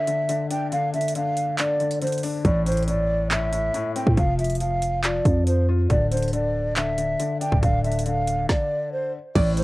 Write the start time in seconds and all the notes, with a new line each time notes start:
Already playing: D3 E5
0.07 D3, closed hi-hat
0.29 D3, closed hi-hat
0.50 D4 G5, closed hi-hat
0.72 D3 F5, closed hi-hat
0.94 D3 E5, closed hi-hat
1.01 closed hi-hat
1.08 closed hi-hat
1.15 D3 F5, closed hi-hat
1.37 closed hi-hat
1.58 D3 D5, clap, closed hi-hat
1.80 D3, closed hi-hat
1.91 closed hi-hat
2.02 D3 C5, closed hi-hat
2.07 closed hi-hat
2.12 closed hi-hat
2.18 closed hi-hat
2.23 D4, open hi-hat
2.45 A1 A2 D5, kick, closed hi-hat
2.66 A2 C5, closed hi-hat
2.72 closed hi-hat
2.77 closed hi-hat
2.83 closed hi-hat
2.88 A2 D5, closed hi-hat
3.31 A2 E5, clap, closed hi-hat
3.52 A2, closed hi-hat
3.74 A2, closed hi-hat
3.96 C4 G5, closed hi-hat
4.07 A2, kick
4.17 F1 F3 F5, kick, closed hi-hat
4.39 F3 E5, closed hi-hat
4.44 closed hi-hat
4.50 closed hi-hat
4.55 closed hi-hat
4.60 F3 F5, closed hi-hat
4.82 closed hi-hat
5.04 F3 D5, clap, closed hi-hat
5.25 F2 F3, kick, closed hi-hat
5.47 F3 C5, closed hi-hat
5.69 F4
5.90 D1 D3 D5, kick, closed hi-hat
6.11 D3 C5, closed hi-hat
6.17 closed hi-hat
6.22 closed hi-hat
6.28 closed hi-hat
6.33 D3 D5, closed hi-hat
6.76 D3 E5, clap, closed hi-hat
6.98 D3, closed hi-hat
7.20 D3, closed hi-hat
7.41 D4 G5, closed hi-hat
7.52 D1, kick
7.63 D1 D3 F5, kick, closed hi-hat
7.84 D3 E5, closed hi-hat
7.92 closed hi-hat
7.99 closed hi-hat
8.06 D3 F5, closed hi-hat
8.27 closed hi-hat
8.49 D5, kick, snare
8.92 C5
9.35 A1 A2 A3 E4 C5 D5, kick, closed hi-hat, crash
9.57 A2 C5, closed hi-hat